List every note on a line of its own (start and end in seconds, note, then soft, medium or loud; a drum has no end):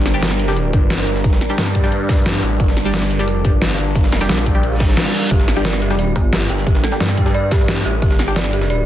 0.00 0.72 G1 loud
0.00 8.86 G3 medium
0.00 8.86 D4 medium
0.00 8.86 A#4 medium
0.00 2.59 D5 medium
0.06 snare soft
0.06 closed hi-hat medium
0.14 0.22 G3 loud
0.14 0.22 D4 medium
0.14 0.22 G4 loud
0.14 closed hi-hat soft
0.23 snare loud
0.23 closed hi-hat medium
0.31 snare soft
0.31 closed hi-hat soft
0.39 closed hi-hat loud
0.39 closed hi-hat medium
0.48 0.56 G3 loud
0.48 0.56 D4 medium
0.48 0.56 G4 loud
0.48 snare medium
0.56 closed hi-hat medium
0.73 1.06 G1 loud
0.73 kick loud
0.73 closed hi-hat medium
0.90 snare loud
0.90 closed hi-hat medium
0.99 snare soft
1.07 1.40 G1 loud
1.07 closed hi-hat medium
1.07 open hi-hat medium
1.16 snare soft
1.24 kick loud
1.24 closed hi-hat medium
1.33 snare medium
1.41 snare soft
1.41 closed hi-hat medium
1.50 1.82 G3 loud
1.50 1.82 D4 medium
1.50 1.82 G4 loud
1.50 snare soft
1.58 2.42 G2 loud
1.58 snare loud
1.58 closed hi-hat medium
1.58 closed hi-hat loud
1.67 snare medium
1.67 snare soft
1.75 kick medium
1.75 closed hi-hat loud
1.75 closed hi-hat medium
1.84 1.92 G3 medium
1.84 1.92 D4 medium
1.84 1.92 G4 medium
1.84 snare medium
1.92 closed hi-hat medium
2.09 kick loud
2.09 snare loud
2.09 closed hi-hat medium
2.18 snare soft
2.26 snare loud
2.26 closed hi-hat medium
2.34 snare soft
2.43 2.59 A1 loud
2.43 closed hi-hat medium
2.43 open hi-hat medium
2.43 zap medium
2.60 3.19 G1 loud
2.60 5.30 F5 medium
2.60 kick loud
2.60 closed hi-hat medium
2.68 snare medium
2.77 snare soft
2.77 closed hi-hat loud
2.77 closed hi-hat medium
2.85 2.93 G3 loud
2.85 2.93 D4 medium
2.85 2.93 G4 loud
2.85 closed hi-hat soft
2.94 snare loud
2.94 closed hi-hat medium
3.02 snare soft
3.02 closed hi-hat soft
3.11 closed hi-hat loud
3.11 closed hi-hat medium
3.19 3.43 F#1 loud
3.19 3.27 G3 loud
3.19 3.27 D4 medium
3.19 3.27 G4 loud
3.19 snare medium
3.28 closed hi-hat medium
3.45 3.77 G1 medium
3.45 kick loud
3.45 closed hi-hat medium
3.62 snare loud
3.62 closed hi-hat medium
3.70 snare soft
3.79 4.11 G1 loud
3.79 closed hi-hat medium
3.79 open hi-hat medium
3.96 kick loud
3.96 closed hi-hat medium
4.04 snare medium
4.12 4.28 F1 loud
4.12 snare medium
4.12 snare soft
4.12 closed hi-hat medium
4.12 closed hi-hat loud
4.17 snare medium
4.17 closed hi-hat medium
4.21 4.53 G3 loud
4.21 4.53 D4 medium
4.21 4.53 G4 loud
4.21 snare loud
4.21 closed hi-hat medium
4.29 4.77 A#1 medium
4.29 snare loud
4.29 closed hi-hat medium
4.38 snare soft
4.46 kick medium
4.46 closed hi-hat medium
4.46 closed hi-hat loud
4.55 4.63 G3 medium
4.55 4.63 D4 medium
4.55 4.63 G4 medium
4.63 closed hi-hat medium
4.63 reverse cymbal medium
4.77 4.97 A1 medium
4.77 kick loud
4.77 snare loud
4.77 closed hi-hat loud
4.77 closed hi-hat medium
4.89 snare soft
4.97 snare loud
4.97 closed hi-hat medium
5.06 snare soft
5.14 closed hi-hat medium
5.14 open hi-hat medium
5.31 6.14 G1 loud
5.31 5.35 G4 medium
5.31 8.01 D5 medium
5.31 kick loud
5.31 closed hi-hat medium
5.40 snare medium
5.48 snare soft
5.48 closed hi-hat loud
5.48 closed hi-hat medium
5.56 5.64 G3 loud
5.56 5.64 D4 medium
5.56 5.64 G4 loud
5.56 closed hi-hat soft
5.65 5.71 D5 medium
5.65 snare loud
5.65 closed hi-hat medium
5.73 snare soft
5.73 closed hi-hat soft
5.82 5.92 G4 medium
5.82 closed hi-hat loud
5.82 closed hi-hat medium
5.90 5.98 G3 loud
5.90 5.98 D4 medium
5.90 5.98 G4 loud
5.90 snare medium
5.99 6.05 D5 medium
5.99 closed hi-hat medium
6.16 6.48 G1 loud
6.16 6.25 G4 medium
6.16 kick loud
6.16 closed hi-hat loud
6.16 closed hi-hat medium
6.33 6.37 G4 medium
6.33 snare loud
6.33 closed hi-hat medium
6.41 snare soft
6.50 6.82 G1 loud
6.50 6.56 G5 medium
6.50 closed hi-hat medium
6.50 open hi-hat medium
6.58 snare soft
6.67 6.70 G4 medium
6.67 kick loud
6.67 closed hi-hat medium
6.75 snare medium
6.84 6.87 A4 medium
6.84 snare soft
6.84 closed hi-hat loud
6.84 closed hi-hat medium
6.92 7.24 G3 loud
6.92 7.24 D4 medium
6.92 7.24 G4 loud
6.92 snare soft
7.00 7.84 G2 medium
7.00 7.07 D5 medium
7.00 snare loud
7.00 closed hi-hat medium
7.09 snare medium
7.09 snare soft
7.17 7.24 G5 medium
7.17 kick medium
7.17 closed hi-hat loud
7.17 closed hi-hat medium
7.26 7.34 G3 medium
7.26 7.34 D4 medium
7.26 7.34 G4 medium
7.26 snare medium
7.34 7.41 D5 medium
7.34 closed hi-hat medium
7.51 7.61 G4 medium
7.51 kick loud
7.51 snare loud
7.51 closed hi-hat medium
7.51 closed hi-hat loud
7.60 snare soft
7.68 7.78 G4 medium
7.68 snare loud
7.68 closed hi-hat medium
7.77 snare soft
7.85 8.01 A1 loud
7.85 7.95 G4 loud
7.85 closed hi-hat medium
7.85 open hi-hat medium
8.02 8.86 G1 loud
8.02 8.06 G4 medium
8.02 8.86 F5 medium
8.02 kick loud
8.02 closed hi-hat medium
8.11 snare medium
8.19 snare soft
8.19 closed hi-hat medium
8.28 8.36 G3 loud
8.28 8.36 D4 medium
8.28 8.36 G4 loud
8.28 closed hi-hat soft
8.36 8.42 D5 medium
8.36 snare loud
8.36 closed hi-hat loud
8.36 closed hi-hat medium
8.45 snare soft
8.45 closed hi-hat soft
8.53 8.63 G4 medium
8.53 closed hi-hat medium
8.53 closed hi-hat loud
8.62 snare medium
8.70 8.76 D5 medium
8.70 closed hi-hat medium